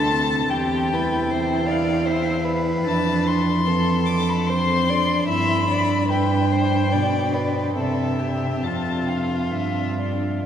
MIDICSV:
0, 0, Header, 1, 5, 480
1, 0, Start_track
1, 0, Key_signature, 0, "major"
1, 0, Tempo, 780234
1, 312, Time_signature, 3, 2, 24, 8
1, 1748, Tempo, 815217
1, 3668, Tempo, 841515
1, 5108, Tempo, 887574
1, 5588, Tempo, 949367
1, 6065, End_track
2, 0, Start_track
2, 0, Title_t, "Violin"
2, 0, Program_c, 0, 40
2, 0, Note_on_c, 0, 81, 109
2, 307, Note_on_c, 0, 79, 92
2, 317, Note_off_c, 0, 81, 0
2, 1026, Note_off_c, 0, 79, 0
2, 1028, Note_on_c, 0, 77, 77
2, 1266, Note_on_c, 0, 76, 81
2, 1275, Note_off_c, 0, 77, 0
2, 1505, Note_off_c, 0, 76, 0
2, 1752, Note_on_c, 0, 81, 91
2, 2000, Note_on_c, 0, 84, 90
2, 2009, Note_off_c, 0, 81, 0
2, 2467, Note_on_c, 0, 86, 88
2, 2476, Note_off_c, 0, 84, 0
2, 2598, Note_on_c, 0, 83, 89
2, 2607, Note_off_c, 0, 86, 0
2, 2704, Note_on_c, 0, 84, 102
2, 2713, Note_off_c, 0, 83, 0
2, 3184, Note_off_c, 0, 84, 0
2, 3188, Note_on_c, 0, 83, 104
2, 3660, Note_off_c, 0, 83, 0
2, 3674, Note_on_c, 0, 79, 97
2, 4370, Note_on_c, 0, 74, 74
2, 4379, Note_off_c, 0, 79, 0
2, 4610, Note_off_c, 0, 74, 0
2, 4614, Note_on_c, 0, 76, 79
2, 5113, Note_on_c, 0, 81, 69
2, 5121, Note_off_c, 0, 76, 0
2, 5354, Note_on_c, 0, 77, 57
2, 5362, Note_off_c, 0, 81, 0
2, 5585, Note_on_c, 0, 76, 66
2, 5592, Note_off_c, 0, 77, 0
2, 5822, Note_off_c, 0, 76, 0
2, 5829, Note_on_c, 0, 74, 57
2, 6064, Note_off_c, 0, 74, 0
2, 6065, End_track
3, 0, Start_track
3, 0, Title_t, "Violin"
3, 0, Program_c, 1, 40
3, 0, Note_on_c, 1, 69, 75
3, 311, Note_off_c, 1, 69, 0
3, 315, Note_on_c, 1, 67, 74
3, 575, Note_on_c, 1, 71, 66
3, 584, Note_off_c, 1, 67, 0
3, 802, Note_on_c, 1, 72, 65
3, 811, Note_off_c, 1, 71, 0
3, 1020, Note_on_c, 1, 74, 73
3, 1029, Note_off_c, 1, 72, 0
3, 1261, Note_on_c, 1, 72, 74
3, 1270, Note_off_c, 1, 74, 0
3, 1500, Note_on_c, 1, 71, 81
3, 1510, Note_off_c, 1, 72, 0
3, 2233, Note_on_c, 1, 69, 76
3, 2242, Note_off_c, 1, 71, 0
3, 2718, Note_on_c, 1, 72, 71
3, 2727, Note_off_c, 1, 69, 0
3, 2955, Note_on_c, 1, 74, 66
3, 2964, Note_off_c, 1, 72, 0
3, 3181, Note_off_c, 1, 74, 0
3, 3184, Note_on_c, 1, 76, 85
3, 3421, Note_off_c, 1, 76, 0
3, 3435, Note_on_c, 1, 74, 68
3, 3654, Note_off_c, 1, 74, 0
3, 3658, Note_on_c, 1, 71, 64
3, 3900, Note_on_c, 1, 72, 69
3, 3909, Note_off_c, 1, 71, 0
3, 4133, Note_on_c, 1, 74, 71
3, 4142, Note_off_c, 1, 72, 0
3, 4370, Note_on_c, 1, 71, 61
3, 4378, Note_off_c, 1, 74, 0
3, 4611, Note_off_c, 1, 71, 0
3, 4615, Note_on_c, 1, 69, 58
3, 4856, Note_on_c, 1, 67, 54
3, 4864, Note_off_c, 1, 69, 0
3, 5114, Note_on_c, 1, 65, 64
3, 5122, Note_off_c, 1, 67, 0
3, 6065, Note_off_c, 1, 65, 0
3, 6065, End_track
4, 0, Start_track
4, 0, Title_t, "Viola"
4, 0, Program_c, 2, 41
4, 0, Note_on_c, 2, 62, 69
4, 75, Note_on_c, 2, 60, 64
4, 85, Note_off_c, 2, 62, 0
4, 316, Note_off_c, 2, 60, 0
4, 322, Note_on_c, 2, 60, 74
4, 571, Note_on_c, 2, 64, 76
4, 581, Note_off_c, 2, 60, 0
4, 1765, Note_on_c, 2, 62, 76
4, 1774, Note_off_c, 2, 64, 0
4, 2236, Note_off_c, 2, 62, 0
4, 2240, Note_on_c, 2, 60, 64
4, 2704, Note_off_c, 2, 60, 0
4, 2721, Note_on_c, 2, 60, 68
4, 2950, Note_on_c, 2, 62, 66
4, 2959, Note_off_c, 2, 60, 0
4, 3186, Note_on_c, 2, 64, 73
4, 3195, Note_off_c, 2, 62, 0
4, 3427, Note_off_c, 2, 64, 0
4, 3434, Note_on_c, 2, 62, 70
4, 4600, Note_off_c, 2, 62, 0
4, 4616, Note_on_c, 2, 60, 66
4, 4857, Note_off_c, 2, 60, 0
4, 4861, Note_on_c, 2, 60, 53
4, 5588, Note_on_c, 2, 62, 48
4, 5596, Note_off_c, 2, 60, 0
4, 6065, Note_off_c, 2, 62, 0
4, 6065, End_track
5, 0, Start_track
5, 0, Title_t, "Cello"
5, 0, Program_c, 3, 42
5, 0, Note_on_c, 3, 38, 70
5, 316, Note_off_c, 3, 38, 0
5, 318, Note_on_c, 3, 40, 68
5, 1728, Note_off_c, 3, 40, 0
5, 1755, Note_on_c, 3, 41, 74
5, 3169, Note_off_c, 3, 41, 0
5, 3191, Note_on_c, 3, 43, 68
5, 4148, Note_on_c, 3, 47, 60
5, 4157, Note_off_c, 3, 43, 0
5, 4623, Note_off_c, 3, 47, 0
5, 4625, Note_on_c, 3, 48, 58
5, 5102, Note_off_c, 3, 48, 0
5, 5108, Note_on_c, 3, 41, 51
5, 5587, Note_on_c, 3, 43, 52
5, 5595, Note_off_c, 3, 41, 0
5, 6065, Note_off_c, 3, 43, 0
5, 6065, End_track
0, 0, End_of_file